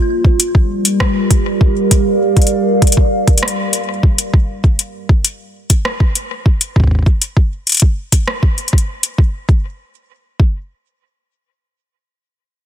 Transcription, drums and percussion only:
0.25 kick
0.40 closed hi-hat
0.55 kick
0.85 closed hi-hat
1.00 kick, cross-stick
1.31 kick, closed hi-hat
1.61 kick
1.91 kick, closed hi-hat
2.37 kick, closed hi-hat
2.42 closed hi-hat
2.47 closed hi-hat
2.82 kick, closed hi-hat
2.87 closed hi-hat
2.92 closed hi-hat
2.97 kick
3.27 kick, closed hi-hat
3.38 closed hi-hat
3.43 cross-stick
3.48 closed hi-hat
3.73 closed hi-hat
4.03 kick
4.18 closed hi-hat
4.34 kick
4.64 kick
4.79 closed hi-hat
5.09 kick
5.25 closed hi-hat
5.70 kick, closed hi-hat
5.85 cross-stick
6.00 kick
6.15 closed hi-hat
6.46 kick
6.61 closed hi-hat
6.76 kick
6.80 kick
6.84 kick
6.87 kick
6.91 kick
6.95 kick
6.99 kick
7.03 kick
7.06 kick
7.22 closed hi-hat
7.37 kick
7.67 closed hi-hat
7.69 closed hi-hat
7.72 closed hi-hat
7.74 closed hi-hat
7.77 closed hi-hat
7.80 kick, closed hi-hat
8.12 kick, closed hi-hat
8.28 cross-stick
8.43 kick
8.58 closed hi-hat
8.68 closed hi-hat
8.73 kick
8.78 closed hi-hat
9.03 closed hi-hat
9.18 kick
9.49 kick
10.40 kick

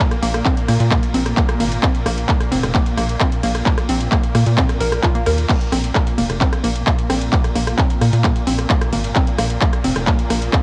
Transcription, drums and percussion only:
0.11 cross-stick, closed hi-hat
0.23 open hi-hat, ride
0.34 cross-stick, closed hi-hat
0.46 kick, clap, closed hi-hat
0.57 closed hi-hat
0.68 cross-stick, open hi-hat, ride
0.80 closed hi-hat
0.91 kick, cross-stick, clap, closed hi-hat
1.03 closed hi-hat
1.14 open hi-hat, ride
1.26 cross-stick, closed hi-hat
1.37 kick, clap, closed hi-hat
1.49 cross-stick, closed hi-hat
1.60 open hi-hat, ride
1.72 closed hi-hat
1.83 kick, cross-stick, clap, closed hi-hat
1.95 closed hi-hat
2.06 cross-stick, open hi-hat, ride
2.18 closed hi-hat
2.29 kick, clap, closed hi-hat
2.40 cross-stick, closed hi-hat
2.52 open hi-hat, ride
2.63 cross-stick, closed hi-hat
2.74 kick, clap, closed hi-hat
2.86 closed hi-hat
2.97 cross-stick, open hi-hat, ride
3.09 closed hi-hat
3.20 kick, cross-stick, clap, closed hi-hat
3.32 closed hi-hat
3.43 open hi-hat, ride
3.55 cross-stick, closed hi-hat
3.66 kick, clap, closed hi-hat
3.78 cross-stick, closed hi-hat
3.89 open hi-hat, ride
4.01 closed hi-hat
4.12 kick, cross-stick, clap, closed hi-hat
4.24 closed hi-hat
4.35 cross-stick, open hi-hat, ride
4.47 closed hi-hat
4.58 kick, clap, closed hi-hat
4.69 cross-stick, closed hi-hat
4.81 open hi-hat, ride
4.92 cross-stick, closed hi-hat
5.04 kick, clap, closed hi-hat
5.15 closed hi-hat
5.26 cross-stick, open hi-hat, ride
5.38 closed hi-hat
5.49 kick, clap, closed hi-hat, crash
5.61 closed hi-hat
5.72 cross-stick, open hi-hat, ride
5.84 closed hi-hat
5.95 kick, cross-stick, clap, closed hi-hat
6.07 closed hi-hat
6.18 open hi-hat, ride
6.30 cross-stick, closed hi-hat
6.41 kick, clap, closed hi-hat
6.53 cross-stick, closed hi-hat
6.64 open hi-hat, ride
6.76 closed hi-hat
6.87 kick, cross-stick, clap, closed hi-hat
6.98 closed hi-hat
7.10 cross-stick, open hi-hat, ride
7.21 closed hi-hat
7.33 kick, clap, closed hi-hat
7.44 cross-stick, closed hi-hat
7.55 open hi-hat, ride
7.67 cross-stick, closed hi-hat
7.78 kick, clap, closed hi-hat
7.90 closed hi-hat
8.01 cross-stick, open hi-hat, ride
8.13 closed hi-hat
8.24 kick, cross-stick, clap, closed hi-hat
8.36 closed hi-hat
8.47 open hi-hat, ride
8.59 cross-stick, closed hi-hat
8.70 kick, clap, closed hi-hat
8.82 cross-stick, closed hi-hat
8.93 open hi-hat, ride
9.04 closed hi-hat
9.16 kick, cross-stick, clap, closed hi-hat
9.27 closed hi-hat
9.38 cross-stick, open hi-hat, ride
9.50 closed hi-hat
9.61 kick, clap, closed hi-hat
9.73 cross-stick, closed hi-hat
9.84 open hi-hat, ride
9.96 cross-stick, closed hi-hat
10.07 kick, clap, closed hi-hat
10.19 closed hi-hat
10.30 cross-stick, open hi-hat, ride
10.42 closed hi-hat
10.53 kick, cross-stick, clap, closed hi-hat

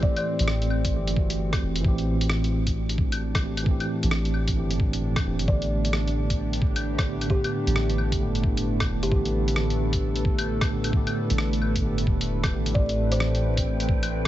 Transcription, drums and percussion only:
0.03 kick
0.17 closed hi-hat, claves
0.39 closed hi-hat
0.48 cross-stick
0.62 closed hi-hat
0.70 claves
0.85 kick, closed hi-hat
1.07 closed hi-hat
1.16 kick
1.30 closed hi-hat
1.53 kick, cross-stick, closed hi-hat, claves
1.76 closed hi-hat
1.85 kick
1.98 closed hi-hat
2.21 closed hi-hat
2.29 cross-stick
2.44 closed hi-hat
2.67 kick, closed hi-hat
2.89 closed hi-hat
2.98 kick
3.12 closed hi-hat, claves
3.35 kick, cross-stick, closed hi-hat, claves
3.57 closed hi-hat, claves
3.66 kick
3.80 closed hi-hat, claves
4.03 closed hi-hat
4.11 cross-stick
4.25 closed hi-hat
4.34 claves
4.48 kick, closed hi-hat
4.71 closed hi-hat
4.80 kick
4.93 closed hi-hat
5.16 kick, cross-stick, closed hi-hat, claves
5.39 closed hi-hat
5.48 kick
5.62 closed hi-hat
5.85 closed hi-hat
5.93 cross-stick
6.08 closed hi-hat
6.30 kick, closed hi-hat
6.53 closed hi-hat
6.62 kick
6.76 closed hi-hat, claves
6.99 kick, cross-stick, closed hi-hat, claves
7.21 closed hi-hat, claves
7.30 kick
7.44 closed hi-hat, claves
7.67 closed hi-hat
7.76 cross-stick
7.90 closed hi-hat
7.98 claves
8.12 kick, closed hi-hat
8.35 closed hi-hat
8.44 kick
8.57 closed hi-hat
8.80 kick, cross-stick, closed hi-hat, claves
9.03 closed hi-hat
9.12 kick
9.25 closed hi-hat
9.48 closed hi-hat
9.56 cross-stick
9.70 closed hi-hat
9.93 kick, closed hi-hat
10.16 closed hi-hat
10.25 kick
10.39 closed hi-hat, claves
10.61 kick, cross-stick, closed hi-hat, claves
10.84 closed hi-hat, claves
10.93 kick
11.07 closed hi-hat, claves
11.30 closed hi-hat
11.38 cross-stick
11.53 closed hi-hat
11.62 claves
11.76 kick, closed hi-hat
11.98 closed hi-hat
12.07 kick
12.21 closed hi-hat
12.44 kick, cross-stick, closed hi-hat, claves
12.66 closed hi-hat
12.75 kick
12.89 closed hi-hat
13.12 closed hi-hat
13.20 cross-stick
13.35 closed hi-hat
13.57 kick, closed hi-hat
13.80 closed hi-hat
13.89 kick
14.03 closed hi-hat, claves

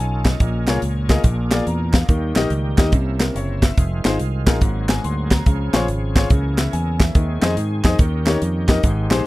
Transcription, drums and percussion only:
0.25 kick, snare, clap, closed hi-hat
0.40 kick, closed hi-hat
0.67 snare, clap, closed hi-hat
0.82 closed hi-hat
1.09 kick, snare, clap, closed hi-hat
1.24 kick, closed hi-hat
1.51 snare, clap, closed hi-hat
1.67 closed hi-hat
1.93 kick, snare, clap, closed hi-hat
2.09 kick, closed hi-hat
2.36 snare, clap, closed hi-hat
2.50 closed hi-hat
2.78 kick, snare, clap, closed hi-hat
2.92 kick, closed hi-hat
3.20 snare, clap, closed hi-hat
3.36 closed hi-hat
3.62 kick, snare, clap, closed hi-hat
3.77 kick, closed hi-hat
4.05 snare, clap, closed hi-hat
4.19 closed hi-hat
4.47 kick, snare, clap, closed hi-hat
4.61 kick, closed hi-hat
4.89 snare, clap, closed hi-hat
5.04 closed hi-hat
5.31 kick, snare, clap, closed hi-hat
5.46 kick, closed hi-hat
5.73 snare, clap, closed hi-hat
5.88 closed hi-hat
6.16 kick, snare, clap, closed hi-hat
6.30 kick, closed hi-hat
6.58 snare, clap, closed hi-hat
6.73 closed hi-hat
7.00 kick, snare, clap, closed hi-hat
7.15 kick, closed hi-hat
7.42 snare, clap, closed hi-hat
7.57 closed hi-hat
7.84 kick, snare, clap, closed hi-hat
7.99 kick, closed hi-hat
8.26 snare, clap, closed hi-hat
8.42 closed hi-hat
8.69 kick, snare, clap, closed hi-hat
8.83 kick, closed hi-hat
9.11 snare, clap, closed hi-hat

